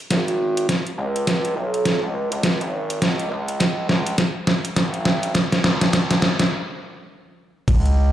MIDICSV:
0, 0, Header, 1, 3, 480
1, 0, Start_track
1, 0, Tempo, 582524
1, 568, Time_signature, 4, 2, 24, 8
1, 6693, End_track
2, 0, Start_track
2, 0, Title_t, "Analog synth bass"
2, 0, Program_c, 0, 38
2, 88, Note_on_c, 0, 32, 97
2, 552, Note_off_c, 0, 32, 0
2, 808, Note_on_c, 0, 37, 97
2, 1272, Note_off_c, 0, 37, 0
2, 1288, Note_on_c, 0, 35, 94
2, 1648, Note_off_c, 0, 35, 0
2, 1672, Note_on_c, 0, 37, 96
2, 1889, Note_off_c, 0, 37, 0
2, 1913, Note_on_c, 0, 37, 96
2, 2129, Note_off_c, 0, 37, 0
2, 2152, Note_on_c, 0, 32, 96
2, 2472, Note_off_c, 0, 32, 0
2, 2488, Note_on_c, 0, 37, 92
2, 2712, Note_off_c, 0, 37, 0
2, 2729, Note_on_c, 0, 37, 94
2, 3193, Note_off_c, 0, 37, 0
2, 3210, Note_on_c, 0, 37, 94
2, 3433, Note_off_c, 0, 37, 0
2, 3926, Note_on_c, 0, 32, 99
2, 4391, Note_off_c, 0, 32, 0
2, 4646, Note_on_c, 0, 37, 98
2, 5112, Note_off_c, 0, 37, 0
2, 6327, Note_on_c, 0, 37, 98
2, 6688, Note_off_c, 0, 37, 0
2, 6693, End_track
3, 0, Start_track
3, 0, Title_t, "Drums"
3, 87, Note_on_c, 9, 38, 56
3, 87, Note_on_c, 9, 42, 68
3, 88, Note_on_c, 9, 36, 87
3, 169, Note_off_c, 9, 38, 0
3, 169, Note_off_c, 9, 42, 0
3, 171, Note_off_c, 9, 36, 0
3, 232, Note_on_c, 9, 42, 37
3, 314, Note_off_c, 9, 42, 0
3, 472, Note_on_c, 9, 42, 53
3, 554, Note_off_c, 9, 42, 0
3, 568, Note_on_c, 9, 36, 93
3, 568, Note_on_c, 9, 38, 54
3, 568, Note_on_c, 9, 42, 66
3, 651, Note_off_c, 9, 36, 0
3, 651, Note_off_c, 9, 38, 0
3, 651, Note_off_c, 9, 42, 0
3, 713, Note_on_c, 9, 42, 36
3, 796, Note_off_c, 9, 42, 0
3, 954, Note_on_c, 9, 42, 53
3, 1037, Note_off_c, 9, 42, 0
3, 1048, Note_on_c, 9, 38, 65
3, 1048, Note_on_c, 9, 42, 69
3, 1049, Note_on_c, 9, 36, 93
3, 1131, Note_off_c, 9, 36, 0
3, 1131, Note_off_c, 9, 38, 0
3, 1131, Note_off_c, 9, 42, 0
3, 1193, Note_on_c, 9, 42, 41
3, 1275, Note_off_c, 9, 42, 0
3, 1434, Note_on_c, 9, 42, 52
3, 1516, Note_off_c, 9, 42, 0
3, 1528, Note_on_c, 9, 36, 100
3, 1528, Note_on_c, 9, 38, 62
3, 1528, Note_on_c, 9, 42, 66
3, 1610, Note_off_c, 9, 38, 0
3, 1610, Note_off_c, 9, 42, 0
3, 1611, Note_off_c, 9, 36, 0
3, 1910, Note_on_c, 9, 42, 58
3, 1992, Note_off_c, 9, 42, 0
3, 2005, Note_on_c, 9, 38, 71
3, 2005, Note_on_c, 9, 42, 67
3, 2007, Note_on_c, 9, 36, 93
3, 2088, Note_off_c, 9, 38, 0
3, 2088, Note_off_c, 9, 42, 0
3, 2090, Note_off_c, 9, 36, 0
3, 2151, Note_on_c, 9, 42, 37
3, 2234, Note_off_c, 9, 42, 0
3, 2390, Note_on_c, 9, 42, 55
3, 2473, Note_off_c, 9, 42, 0
3, 2487, Note_on_c, 9, 36, 97
3, 2487, Note_on_c, 9, 38, 71
3, 2487, Note_on_c, 9, 42, 65
3, 2570, Note_off_c, 9, 36, 0
3, 2570, Note_off_c, 9, 38, 0
3, 2570, Note_off_c, 9, 42, 0
3, 2632, Note_on_c, 9, 42, 37
3, 2715, Note_off_c, 9, 42, 0
3, 2871, Note_on_c, 9, 42, 56
3, 2953, Note_off_c, 9, 42, 0
3, 2967, Note_on_c, 9, 36, 95
3, 2970, Note_on_c, 9, 38, 79
3, 2970, Note_on_c, 9, 42, 72
3, 3049, Note_off_c, 9, 36, 0
3, 3052, Note_off_c, 9, 38, 0
3, 3052, Note_off_c, 9, 42, 0
3, 3208, Note_on_c, 9, 38, 79
3, 3290, Note_off_c, 9, 38, 0
3, 3349, Note_on_c, 9, 42, 52
3, 3432, Note_off_c, 9, 42, 0
3, 3445, Note_on_c, 9, 38, 82
3, 3445, Note_on_c, 9, 42, 66
3, 3446, Note_on_c, 9, 36, 102
3, 3527, Note_off_c, 9, 38, 0
3, 3527, Note_off_c, 9, 42, 0
3, 3529, Note_off_c, 9, 36, 0
3, 3685, Note_on_c, 9, 38, 86
3, 3767, Note_off_c, 9, 38, 0
3, 3829, Note_on_c, 9, 42, 53
3, 3911, Note_off_c, 9, 42, 0
3, 3926, Note_on_c, 9, 36, 94
3, 3926, Note_on_c, 9, 38, 89
3, 3926, Note_on_c, 9, 42, 69
3, 4008, Note_off_c, 9, 36, 0
3, 4008, Note_off_c, 9, 38, 0
3, 4008, Note_off_c, 9, 42, 0
3, 4069, Note_on_c, 9, 42, 37
3, 4151, Note_off_c, 9, 42, 0
3, 4164, Note_on_c, 9, 38, 88
3, 4247, Note_off_c, 9, 38, 0
3, 4310, Note_on_c, 9, 42, 54
3, 4392, Note_off_c, 9, 42, 0
3, 4405, Note_on_c, 9, 36, 97
3, 4408, Note_on_c, 9, 38, 90
3, 4408, Note_on_c, 9, 42, 64
3, 4488, Note_off_c, 9, 36, 0
3, 4490, Note_off_c, 9, 38, 0
3, 4490, Note_off_c, 9, 42, 0
3, 4552, Note_on_c, 9, 38, 79
3, 4552, Note_on_c, 9, 42, 36
3, 4634, Note_off_c, 9, 38, 0
3, 4634, Note_off_c, 9, 42, 0
3, 4649, Note_on_c, 9, 38, 97
3, 4731, Note_off_c, 9, 38, 0
3, 4791, Note_on_c, 9, 38, 88
3, 4791, Note_on_c, 9, 42, 53
3, 4873, Note_off_c, 9, 38, 0
3, 4873, Note_off_c, 9, 42, 0
3, 4886, Note_on_c, 9, 36, 99
3, 4889, Note_on_c, 9, 38, 98
3, 4889, Note_on_c, 9, 42, 67
3, 4968, Note_off_c, 9, 36, 0
3, 4972, Note_off_c, 9, 38, 0
3, 4972, Note_off_c, 9, 42, 0
3, 5031, Note_on_c, 9, 38, 90
3, 5031, Note_on_c, 9, 42, 40
3, 5114, Note_off_c, 9, 38, 0
3, 5114, Note_off_c, 9, 42, 0
3, 5127, Note_on_c, 9, 38, 94
3, 5209, Note_off_c, 9, 38, 0
3, 5269, Note_on_c, 9, 38, 90
3, 5269, Note_on_c, 9, 42, 52
3, 5352, Note_off_c, 9, 38, 0
3, 5352, Note_off_c, 9, 42, 0
3, 6327, Note_on_c, 9, 36, 122
3, 6328, Note_on_c, 9, 42, 66
3, 6328, Note_on_c, 9, 49, 97
3, 6409, Note_off_c, 9, 36, 0
3, 6410, Note_off_c, 9, 42, 0
3, 6410, Note_off_c, 9, 49, 0
3, 6473, Note_on_c, 9, 42, 37
3, 6555, Note_off_c, 9, 42, 0
3, 6693, End_track
0, 0, End_of_file